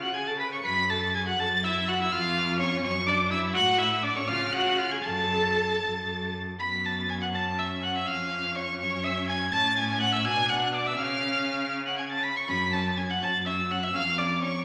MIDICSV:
0, 0, Header, 1, 5, 480
1, 0, Start_track
1, 0, Key_signature, 3, "minor"
1, 0, Tempo, 497925
1, 627, Time_signature, 6, 3, 24, 8
1, 1579, Tempo, 479616
1, 3979, Tempo, 510638
1, 6859, Tempo, 485044
1, 10219, Tempo, 495050
1, 13099, Tempo, 475059
1, 14294, End_track
2, 0, Start_track
2, 0, Title_t, "Violin"
2, 0, Program_c, 0, 40
2, 21, Note_on_c, 0, 90, 77
2, 132, Note_on_c, 0, 92, 70
2, 146, Note_off_c, 0, 90, 0
2, 258, Note_on_c, 0, 93, 67
2, 272, Note_off_c, 0, 92, 0
2, 373, Note_off_c, 0, 93, 0
2, 379, Note_on_c, 0, 95, 84
2, 429, Note_off_c, 0, 95, 0
2, 513, Note_on_c, 0, 97, 87
2, 625, Note_on_c, 0, 95, 108
2, 639, Note_off_c, 0, 97, 0
2, 863, Note_on_c, 0, 93, 92
2, 878, Note_off_c, 0, 95, 0
2, 1100, Note_on_c, 0, 92, 96
2, 1115, Note_off_c, 0, 93, 0
2, 1221, Note_off_c, 0, 92, 0
2, 1234, Note_on_c, 0, 90, 95
2, 1343, Note_on_c, 0, 93, 113
2, 1358, Note_off_c, 0, 90, 0
2, 1577, Note_on_c, 0, 88, 90
2, 1592, Note_off_c, 0, 93, 0
2, 1826, Note_on_c, 0, 90, 96
2, 1841, Note_off_c, 0, 88, 0
2, 1944, Note_off_c, 0, 90, 0
2, 1949, Note_on_c, 0, 88, 116
2, 2064, Note_on_c, 0, 89, 104
2, 2079, Note_off_c, 0, 88, 0
2, 2537, Note_off_c, 0, 89, 0
2, 2543, Note_on_c, 0, 85, 108
2, 2767, Note_off_c, 0, 85, 0
2, 2773, Note_on_c, 0, 85, 115
2, 3006, Note_on_c, 0, 86, 106
2, 3021, Note_off_c, 0, 85, 0
2, 3243, Note_off_c, 0, 86, 0
2, 3249, Note_on_c, 0, 88, 115
2, 3329, Note_off_c, 0, 88, 0
2, 3489, Note_on_c, 0, 90, 127
2, 3730, Note_on_c, 0, 88, 102
2, 3745, Note_off_c, 0, 90, 0
2, 3973, Note_on_c, 0, 86, 113
2, 3988, Note_off_c, 0, 88, 0
2, 4090, Note_off_c, 0, 86, 0
2, 4095, Note_on_c, 0, 85, 96
2, 4204, Note_on_c, 0, 89, 113
2, 4218, Note_off_c, 0, 85, 0
2, 4437, Note_on_c, 0, 90, 96
2, 4452, Note_off_c, 0, 89, 0
2, 4680, Note_on_c, 0, 89, 103
2, 4694, Note_off_c, 0, 90, 0
2, 4805, Note_on_c, 0, 92, 93
2, 4819, Note_off_c, 0, 89, 0
2, 4915, Note_off_c, 0, 92, 0
2, 4920, Note_on_c, 0, 93, 94
2, 6121, Note_off_c, 0, 93, 0
2, 6390, Note_on_c, 0, 95, 88
2, 6626, Note_on_c, 0, 93, 73
2, 6640, Note_off_c, 0, 95, 0
2, 6852, Note_on_c, 0, 92, 85
2, 6867, Note_off_c, 0, 93, 0
2, 6974, Note_off_c, 0, 92, 0
2, 6979, Note_on_c, 0, 90, 82
2, 7028, Note_off_c, 0, 90, 0
2, 7102, Note_on_c, 0, 93, 78
2, 7181, Note_off_c, 0, 93, 0
2, 7340, Note_on_c, 0, 88, 76
2, 7419, Note_off_c, 0, 88, 0
2, 7584, Note_on_c, 0, 90, 77
2, 7703, Note_off_c, 0, 90, 0
2, 7709, Note_on_c, 0, 88, 84
2, 7829, Note_on_c, 0, 89, 85
2, 7844, Note_off_c, 0, 88, 0
2, 8307, Note_off_c, 0, 89, 0
2, 8313, Note_on_c, 0, 85, 89
2, 8539, Note_off_c, 0, 85, 0
2, 8545, Note_on_c, 0, 85, 94
2, 8779, Note_off_c, 0, 85, 0
2, 8787, Note_on_c, 0, 88, 83
2, 8866, Note_off_c, 0, 88, 0
2, 9014, Note_on_c, 0, 92, 107
2, 9251, Note_on_c, 0, 93, 120
2, 9266, Note_off_c, 0, 92, 0
2, 9496, Note_on_c, 0, 92, 117
2, 9511, Note_off_c, 0, 93, 0
2, 9732, Note_off_c, 0, 92, 0
2, 9738, Note_on_c, 0, 90, 125
2, 9853, Note_on_c, 0, 88, 111
2, 9868, Note_off_c, 0, 90, 0
2, 9973, Note_on_c, 0, 92, 117
2, 9988, Note_off_c, 0, 88, 0
2, 10215, Note_on_c, 0, 90, 93
2, 10230, Note_off_c, 0, 92, 0
2, 10456, Note_on_c, 0, 86, 98
2, 10470, Note_off_c, 0, 90, 0
2, 10579, Note_on_c, 0, 88, 105
2, 10593, Note_off_c, 0, 86, 0
2, 10690, Note_off_c, 0, 88, 0
2, 10696, Note_on_c, 0, 89, 101
2, 11410, Note_off_c, 0, 89, 0
2, 11546, Note_on_c, 0, 90, 84
2, 11659, Note_off_c, 0, 90, 0
2, 11663, Note_on_c, 0, 92, 77
2, 11784, Note_off_c, 0, 92, 0
2, 11792, Note_on_c, 0, 93, 81
2, 11903, Note_on_c, 0, 95, 87
2, 11917, Note_off_c, 0, 93, 0
2, 12027, Note_off_c, 0, 95, 0
2, 12033, Note_on_c, 0, 97, 91
2, 12080, Note_off_c, 0, 97, 0
2, 12152, Note_on_c, 0, 95, 97
2, 12388, Note_on_c, 0, 93, 82
2, 12403, Note_off_c, 0, 95, 0
2, 12625, Note_on_c, 0, 92, 89
2, 12640, Note_off_c, 0, 93, 0
2, 12749, Note_on_c, 0, 90, 86
2, 12764, Note_off_c, 0, 92, 0
2, 12865, Note_on_c, 0, 93, 96
2, 12880, Note_off_c, 0, 90, 0
2, 13100, Note_off_c, 0, 93, 0
2, 13105, Note_on_c, 0, 88, 86
2, 13349, Note_on_c, 0, 90, 92
2, 13364, Note_off_c, 0, 88, 0
2, 13473, Note_on_c, 0, 88, 104
2, 13489, Note_off_c, 0, 90, 0
2, 13590, Note_on_c, 0, 89, 101
2, 13605, Note_off_c, 0, 88, 0
2, 13823, Note_on_c, 0, 86, 92
2, 13838, Note_off_c, 0, 89, 0
2, 14054, Note_off_c, 0, 86, 0
2, 14060, Note_on_c, 0, 85, 106
2, 14286, Note_off_c, 0, 85, 0
2, 14294, End_track
3, 0, Start_track
3, 0, Title_t, "Violin"
3, 0, Program_c, 1, 40
3, 13, Note_on_c, 1, 78, 66
3, 129, Note_off_c, 1, 78, 0
3, 138, Note_on_c, 1, 80, 74
3, 261, Note_on_c, 1, 81, 56
3, 276, Note_off_c, 1, 80, 0
3, 367, Note_off_c, 1, 81, 0
3, 373, Note_on_c, 1, 83, 74
3, 498, Note_off_c, 1, 83, 0
3, 505, Note_on_c, 1, 85, 70
3, 553, Note_off_c, 1, 85, 0
3, 615, Note_on_c, 1, 83, 102
3, 863, Note_on_c, 1, 81, 83
3, 877, Note_off_c, 1, 83, 0
3, 1105, Note_on_c, 1, 80, 84
3, 1120, Note_off_c, 1, 81, 0
3, 1219, Note_off_c, 1, 80, 0
3, 1225, Note_on_c, 1, 78, 81
3, 1340, Note_off_c, 1, 78, 0
3, 1345, Note_on_c, 1, 81, 88
3, 1422, Note_off_c, 1, 81, 0
3, 1578, Note_on_c, 1, 76, 92
3, 1826, Note_on_c, 1, 78, 78
3, 1841, Note_off_c, 1, 76, 0
3, 1955, Note_on_c, 1, 76, 82
3, 1970, Note_off_c, 1, 78, 0
3, 2062, Note_off_c, 1, 76, 0
3, 2068, Note_on_c, 1, 77, 113
3, 2532, Note_off_c, 1, 77, 0
3, 2539, Note_on_c, 1, 73, 91
3, 2771, Note_off_c, 1, 73, 0
3, 2784, Note_on_c, 1, 73, 98
3, 2864, Note_off_c, 1, 73, 0
3, 3020, Note_on_c, 1, 74, 102
3, 3100, Note_off_c, 1, 74, 0
3, 3258, Note_on_c, 1, 76, 91
3, 3489, Note_off_c, 1, 76, 0
3, 3493, Note_on_c, 1, 78, 124
3, 3728, Note_on_c, 1, 76, 94
3, 3743, Note_off_c, 1, 78, 0
3, 3973, Note_on_c, 1, 74, 99
3, 3987, Note_off_c, 1, 76, 0
3, 4087, Note_on_c, 1, 73, 90
3, 4101, Note_off_c, 1, 74, 0
3, 4212, Note_on_c, 1, 77, 104
3, 4226, Note_off_c, 1, 73, 0
3, 4440, Note_off_c, 1, 77, 0
3, 4445, Note_on_c, 1, 78, 95
3, 4686, Note_on_c, 1, 77, 79
3, 4701, Note_off_c, 1, 78, 0
3, 4804, Note_on_c, 1, 80, 80
3, 4818, Note_off_c, 1, 77, 0
3, 4924, Note_on_c, 1, 81, 103
3, 4938, Note_off_c, 1, 80, 0
3, 6147, Note_off_c, 1, 81, 0
3, 6385, Note_on_c, 1, 83, 86
3, 6461, Note_off_c, 1, 83, 0
3, 6619, Note_on_c, 1, 81, 62
3, 6694, Note_off_c, 1, 81, 0
3, 6851, Note_on_c, 1, 80, 70
3, 6901, Note_off_c, 1, 80, 0
3, 6964, Note_on_c, 1, 78, 70
3, 7016, Note_off_c, 1, 78, 0
3, 7086, Note_on_c, 1, 81, 82
3, 7336, Note_on_c, 1, 76, 75
3, 7351, Note_off_c, 1, 81, 0
3, 7582, Note_on_c, 1, 78, 73
3, 7597, Note_off_c, 1, 76, 0
3, 7707, Note_on_c, 1, 76, 80
3, 7722, Note_off_c, 1, 78, 0
3, 7813, Note_on_c, 1, 77, 92
3, 7828, Note_off_c, 1, 76, 0
3, 8296, Note_on_c, 1, 73, 77
3, 8311, Note_off_c, 1, 77, 0
3, 8528, Note_off_c, 1, 73, 0
3, 8534, Note_on_c, 1, 73, 83
3, 8775, Note_on_c, 1, 76, 96
3, 8789, Note_off_c, 1, 73, 0
3, 9017, Note_off_c, 1, 76, 0
3, 9022, Note_on_c, 1, 80, 99
3, 9101, Note_off_c, 1, 80, 0
3, 9257, Note_on_c, 1, 81, 118
3, 9491, Note_off_c, 1, 81, 0
3, 9498, Note_on_c, 1, 80, 96
3, 9736, Note_on_c, 1, 78, 98
3, 9751, Note_off_c, 1, 80, 0
3, 9852, Note_off_c, 1, 78, 0
3, 9858, Note_on_c, 1, 76, 91
3, 9972, Note_off_c, 1, 76, 0
3, 9977, Note_on_c, 1, 80, 121
3, 10217, Note_on_c, 1, 78, 96
3, 10232, Note_off_c, 1, 80, 0
3, 10454, Note_off_c, 1, 78, 0
3, 10460, Note_on_c, 1, 74, 80
3, 10570, Note_on_c, 1, 76, 90
3, 10584, Note_off_c, 1, 74, 0
3, 10689, Note_on_c, 1, 77, 103
3, 10703, Note_off_c, 1, 76, 0
3, 11421, Note_off_c, 1, 77, 0
3, 11546, Note_on_c, 1, 78, 68
3, 11594, Note_off_c, 1, 78, 0
3, 11657, Note_on_c, 1, 80, 72
3, 11708, Note_off_c, 1, 80, 0
3, 11786, Note_on_c, 1, 81, 68
3, 11907, Note_on_c, 1, 83, 88
3, 11922, Note_off_c, 1, 81, 0
3, 12027, Note_on_c, 1, 85, 89
3, 12042, Note_off_c, 1, 83, 0
3, 12142, Note_on_c, 1, 83, 110
3, 12156, Note_off_c, 1, 85, 0
3, 12371, Note_off_c, 1, 83, 0
3, 12377, Note_on_c, 1, 81, 79
3, 12611, Note_off_c, 1, 81, 0
3, 12617, Note_on_c, 1, 80, 87
3, 12666, Note_off_c, 1, 80, 0
3, 12740, Note_on_c, 1, 78, 80
3, 12788, Note_off_c, 1, 78, 0
3, 12865, Note_on_c, 1, 81, 91
3, 12943, Note_off_c, 1, 81, 0
3, 13094, Note_on_c, 1, 76, 82
3, 13174, Note_off_c, 1, 76, 0
3, 13341, Note_on_c, 1, 78, 66
3, 13390, Note_off_c, 1, 78, 0
3, 13463, Note_on_c, 1, 76, 82
3, 13512, Note_off_c, 1, 76, 0
3, 13584, Note_on_c, 1, 77, 103
3, 13823, Note_on_c, 1, 74, 89
3, 13839, Note_off_c, 1, 77, 0
3, 14056, Note_on_c, 1, 73, 83
3, 14071, Note_off_c, 1, 74, 0
3, 14284, Note_off_c, 1, 73, 0
3, 14294, End_track
4, 0, Start_track
4, 0, Title_t, "Viola"
4, 0, Program_c, 2, 41
4, 16, Note_on_c, 2, 66, 63
4, 126, Note_off_c, 2, 66, 0
4, 131, Note_on_c, 2, 68, 70
4, 258, Note_on_c, 2, 69, 65
4, 272, Note_off_c, 2, 68, 0
4, 377, Note_on_c, 2, 71, 65
4, 392, Note_off_c, 2, 69, 0
4, 499, Note_on_c, 2, 73, 60
4, 513, Note_off_c, 2, 71, 0
4, 613, Note_off_c, 2, 73, 0
4, 619, Note_on_c, 2, 71, 87
4, 696, Note_off_c, 2, 71, 0
4, 859, Note_on_c, 2, 69, 82
4, 1096, Note_off_c, 2, 69, 0
4, 1101, Note_on_c, 2, 68, 76
4, 1149, Note_off_c, 2, 68, 0
4, 1215, Note_on_c, 2, 66, 74
4, 1264, Note_off_c, 2, 66, 0
4, 1340, Note_on_c, 2, 69, 79
4, 1417, Note_off_c, 2, 69, 0
4, 1580, Note_on_c, 2, 64, 91
4, 1820, Note_on_c, 2, 66, 84
4, 1835, Note_off_c, 2, 64, 0
4, 1944, Note_on_c, 2, 64, 80
4, 1959, Note_off_c, 2, 66, 0
4, 2058, Note_on_c, 2, 65, 94
4, 2073, Note_off_c, 2, 64, 0
4, 2536, Note_on_c, 2, 61, 90
4, 2551, Note_off_c, 2, 65, 0
4, 2759, Note_off_c, 2, 61, 0
4, 2765, Note_on_c, 2, 61, 95
4, 2845, Note_off_c, 2, 61, 0
4, 3002, Note_on_c, 2, 62, 102
4, 3243, Note_on_c, 2, 64, 101
4, 3258, Note_off_c, 2, 62, 0
4, 3482, Note_on_c, 2, 66, 125
4, 3497, Note_off_c, 2, 64, 0
4, 3723, Note_on_c, 2, 64, 99
4, 3738, Note_off_c, 2, 66, 0
4, 3966, Note_off_c, 2, 64, 0
4, 3972, Note_on_c, 2, 62, 98
4, 4021, Note_off_c, 2, 62, 0
4, 4092, Note_on_c, 2, 61, 84
4, 4140, Note_off_c, 2, 61, 0
4, 4207, Note_on_c, 2, 65, 97
4, 4438, Note_off_c, 2, 65, 0
4, 4444, Note_on_c, 2, 66, 100
4, 4684, Note_on_c, 2, 65, 84
4, 4698, Note_off_c, 2, 66, 0
4, 4798, Note_off_c, 2, 65, 0
4, 4804, Note_on_c, 2, 68, 71
4, 4853, Note_off_c, 2, 68, 0
4, 4926, Note_on_c, 2, 69, 89
4, 6124, Note_off_c, 2, 69, 0
4, 6387, Note_on_c, 2, 59, 57
4, 7096, Note_on_c, 2, 61, 62
4, 7111, Note_off_c, 2, 59, 0
4, 8541, Note_off_c, 2, 61, 0
4, 8547, Note_on_c, 2, 61, 73
4, 9246, Note_off_c, 2, 61, 0
4, 9258, Note_on_c, 2, 61, 83
4, 9974, Note_on_c, 2, 62, 82
4, 9989, Note_off_c, 2, 61, 0
4, 10690, Note_off_c, 2, 62, 0
4, 10695, Note_on_c, 2, 61, 73
4, 11927, Note_off_c, 2, 61, 0
4, 12147, Note_on_c, 2, 61, 68
4, 12224, Note_off_c, 2, 61, 0
4, 12382, Note_on_c, 2, 61, 63
4, 12459, Note_off_c, 2, 61, 0
4, 12619, Note_on_c, 2, 61, 68
4, 12697, Note_off_c, 2, 61, 0
4, 12862, Note_on_c, 2, 61, 63
4, 12939, Note_off_c, 2, 61, 0
4, 13096, Note_on_c, 2, 61, 64
4, 13177, Note_off_c, 2, 61, 0
4, 13341, Note_on_c, 2, 61, 65
4, 13422, Note_off_c, 2, 61, 0
4, 13578, Note_on_c, 2, 61, 75
4, 13659, Note_off_c, 2, 61, 0
4, 13822, Note_on_c, 2, 61, 71
4, 13902, Note_off_c, 2, 61, 0
4, 14058, Note_on_c, 2, 61, 69
4, 14139, Note_off_c, 2, 61, 0
4, 14294, End_track
5, 0, Start_track
5, 0, Title_t, "Cello"
5, 0, Program_c, 3, 42
5, 0, Note_on_c, 3, 49, 62
5, 539, Note_off_c, 3, 49, 0
5, 622, Note_on_c, 3, 42, 91
5, 1256, Note_off_c, 3, 42, 0
5, 1334, Note_on_c, 3, 42, 81
5, 1972, Note_off_c, 3, 42, 0
5, 2053, Note_on_c, 3, 41, 103
5, 2687, Note_off_c, 3, 41, 0
5, 2772, Note_on_c, 3, 42, 94
5, 3405, Note_off_c, 3, 42, 0
5, 3489, Note_on_c, 3, 45, 107
5, 4129, Note_off_c, 3, 45, 0
5, 4213, Note_on_c, 3, 49, 87
5, 4843, Note_off_c, 3, 49, 0
5, 4930, Note_on_c, 3, 42, 83
5, 5579, Note_off_c, 3, 42, 0
5, 5668, Note_on_c, 3, 42, 65
5, 6307, Note_off_c, 3, 42, 0
5, 6392, Note_on_c, 3, 42, 78
5, 7787, Note_off_c, 3, 42, 0
5, 7829, Note_on_c, 3, 41, 79
5, 8547, Note_on_c, 3, 42, 72
5, 8562, Note_off_c, 3, 41, 0
5, 9251, Note_off_c, 3, 42, 0
5, 9257, Note_on_c, 3, 45, 91
5, 9970, Note_on_c, 3, 47, 87
5, 9985, Note_off_c, 3, 45, 0
5, 10687, Note_off_c, 3, 47, 0
5, 10693, Note_on_c, 3, 49, 81
5, 11926, Note_off_c, 3, 49, 0
5, 12145, Note_on_c, 3, 42, 91
5, 12777, Note_off_c, 3, 42, 0
5, 12859, Note_on_c, 3, 42, 69
5, 13499, Note_off_c, 3, 42, 0
5, 13581, Note_on_c, 3, 41, 96
5, 14213, Note_off_c, 3, 41, 0
5, 14294, End_track
0, 0, End_of_file